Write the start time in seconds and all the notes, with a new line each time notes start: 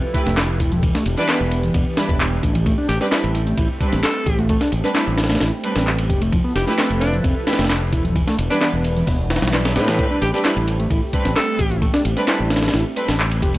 Already playing: F3 E4 G4 A4 B4
0.14 A3 E4 G4 B4, kick, closed hi-hat, ride
0.26 F1 A3, snare, closed hi-hat
0.37 snare, clap, closed hi-hat, ride
0.60 E1 E4, kick, closed hi-hat, ride
0.72 F3, closed hi-hat
0.83 E3 B3 D4, kick, closed hi-hat, ride
0.95 A3, snare
1.06 E1, closed hi-hat, ride
1.17 G3 D4 E4 B4, snare, closed hi-hat
1.29 B3 D4, snare, clap, closed hi-hat, ride
1.41 E1
1.51 closed hi-hat, ride
1.63 E3, closed hi-hat
1.74 E1 B3, kick, closed hi-hat, ride
1.97 G3 D4 E4 B4, snare, closed hi-hat, ride
2.09 E1 G3, kick, closed hi-hat
2.20 clap, closed hi-hat, ride
2.43 A1 D4, kick, closed hi-hat, ride
2.55 E3, closed hi-hat, ride
2.66 A3 C4, kick, closed hi-hat, ride
2.78 D4
2.89 A1 G4, snare, closed hi-hat, ride
3.01 G3 C4 D4 G4 B4, snare, closed hi-hat
3.12 E4, snare, clap, closed hi-hat, ride
3.24 A1, ride
3.35 closed hi-hat, ride
3.47 A3, closed hi-hat
3.58 A1 E4, kick, closed hi-hat, ride
3.81 G3 C4 D4 B4, kick, closed hi-hat, ride
3.93 A1 C4, snare, closed hi-hat
4.03 A4, snare, clap, closed hi-hat, ride
4.26 A1 G4, kick, closed hi-hat, ride
4.39 A3, closed hi-hat
4.49 A3, kick, closed hi-hat, ride
4.61 D4, snare
4.72 A1, closed hi-hat, ride
4.84 G3 C4 D4 B4, snare, closed hi-hat
4.95 E4, snare, clap, closed hi-hat, ride
5.07 A1
5.18 snare, closed hi-hat, ride
5.24 snare, ride
5.30 A3, snare, closed hi-hat, ride
5.35 snare, ride
5.40 A1 E4, snare, closed hi-hat, ride
5.64 G3 C4 D4 B4, closed hi-hat, ride
5.76 A1 C4, snare, closed hi-hat, ride
5.87 clap, closed hi-hat
5.99 ride
6.09 F1 G4, kick, closed hi-hat, ride
6.21 A3, closed hi-hat, ride
6.32 F3 E4 A4 B4, kick, closed hi-hat, ride
6.44 B3
6.56 F1 G4, snare, closed hi-hat, ride
6.67 A3 E4 G4 B4, snare, closed hi-hat
6.78 C4, snare, clap, closed hi-hat, ride
6.90 F1, ride
7.00 D4, snare, closed hi-hat, ride
7.13 F3, closed hi-hat
7.24 F1 C4, kick, closed hi-hat, ride
7.47 A3 E4 G4 B4, snare, closed hi-hat, ride
7.53 snare, ride
7.59 F1 A3, snare, closed hi-hat, ride
7.64 snare, ride
7.70 snare, clap, closed hi-hat, ride
7.93 E1 E4, kick, closed hi-hat, ride
8.05 F3, closed hi-hat
8.15 E3 B3 D4, kick, closed hi-hat, ride
8.27 A3, snare
8.39 E1, closed hi-hat, ride
8.50 G3 D4 E4 B4, snare, closed hi-hat
8.61 B3 D4, snare, clap, closed hi-hat, ride
8.74 E1
8.84 closed hi-hat, ride
8.96 E3, closed hi-hat
9.07 E1 B3, kick, closed hi-hat, ride
9.30 snare, closed hi-hat, ride
9.36 snare, ride
9.42 B1 G3, snare, closed hi-hat, ride
9.47 snare, ride
9.53 G3 D4 E4 B4, snare, clap, closed hi-hat, ride
9.65 snare, ride
9.76 A2 G3 C4 D4 B4, snare, closed hi-hat, ride
9.88 E3, snare, closed hi-hat, ride
9.98 A3 C4 G4, kick, closed hi-hat, ride
10.10 D4
10.22 A1 G4, snare, closed hi-hat, ride
10.33 G3 C4 D4 G4 B4, snare, closed hi-hat
10.44 E4, snare, clap, closed hi-hat, ride
10.57 A1, ride
10.68 closed hi-hat, ride
10.79 A3, closed hi-hat
10.90 A1 E4, kick, closed hi-hat, ride
11.13 G3 C4 D4 B4, kick, closed hi-hat, ride
11.25 A1 C4, snare, closed hi-hat
11.36 A4, snare, clap, closed hi-hat, ride
11.59 A1 G4, kick, closed hi-hat, ride
11.71 A3, closed hi-hat
11.82 A3, kick, closed hi-hat, ride
11.94 D4, snare
12.05 A1, closed hi-hat, ride
12.17 G3 C4 D4 B4, snare, closed hi-hat
12.28 E4, snare, clap, closed hi-hat, ride
12.40 A1
12.50 snare, closed hi-hat, ride
12.56 snare, ride
12.62 A3, snare, closed hi-hat, ride
12.68 snare, ride
12.74 A1 E4, snare, closed hi-hat, ride
12.96 G3 C4 D4 B4, closed hi-hat, ride
13.08 A1 C4, snare, closed hi-hat, ride
13.20 clap, closed hi-hat
13.31 ride
13.42 F1 G4, kick, closed hi-hat, ride
13.54 A3, closed hi-hat, ride